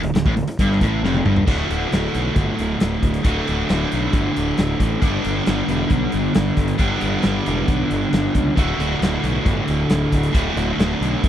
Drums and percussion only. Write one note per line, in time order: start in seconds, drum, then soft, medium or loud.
0.03 closed hi-hat medium
0.15 snare loud
0.15 closed hi-hat medium
0.26 kick loud
0.37 closed hi-hat medium
0.48 closed hi-hat medium
0.59 kick loud
0.59 closed hi-hat medium
0.72 snare soft
0.81 kick loud
0.81 closed hi-hat medium
1.04 snare medium
1.14 high tom medium
1.25 mid tom medium
1.36 floor tom medium
1.48 kick loud
1.48 crash loud
1.71 closed hi-hat medium
1.92 snare loud
1.92 closed hi-hat medium
2.15 closed hi-hat medium
2.36 kick loud
2.36 closed hi-hat medium
2.59 closed hi-hat medium
2.80 snare loud
2.80 closed hi-hat medium
3.03 kick medium
3.03 closed hi-hat medium
3.14 closed hi-hat medium
3.24 kick loud
3.24 closed hi-hat medium
3.47 closed hi-hat medium
3.69 snare loud
3.69 closed hi-hat medium
3.92 closed hi-hat medium
4.13 kick loud
4.13 closed hi-hat medium
4.36 closed hi-hat medium
4.57 snare loud
4.57 closed hi-hat medium
4.80 kick medium
4.80 closed hi-hat medium
5.02 kick loud
5.02 closed hi-hat medium
5.24 closed hi-hat medium
5.46 snare loud
5.46 closed hi-hat medium
5.69 closed hi-hat medium
5.90 kick loud
5.90 closed hi-hat medium
6.12 closed hi-hat medium
6.35 snare loud
6.35 closed hi-hat medium
6.57 kick medium
6.57 closed hi-hat medium
6.68 closed hi-hat medium
6.78 kick loud
6.78 closed hi-hat medium
7.01 closed hi-hat medium
7.23 snare loud
7.23 closed hi-hat medium
7.46 closed hi-hat medium
7.68 kick loud
7.68 closed hi-hat medium
7.91 closed hi-hat medium
8.13 snare loud
8.13 closed hi-hat medium
8.35 kick medium
8.35 closed hi-hat medium
8.57 kick loud
8.57 closed hi-hat medium
8.80 closed hi-hat medium
9.02 snare loud
9.02 closed hi-hat medium
9.24 closed hi-hat medium
9.46 kick loud
9.46 closed hi-hat medium
9.68 closed hi-hat medium
9.90 snare loud
9.90 closed hi-hat medium
10.12 kick medium
10.12 closed hi-hat medium
10.23 closed hi-hat medium
10.34 kick loud
10.34 closed hi-hat medium
10.57 closed hi-hat medium
10.79 snare loud
10.79 closed hi-hat medium
11.02 closed hi-hat medium
11.24 kick loud
11.24 closed hi-hat medium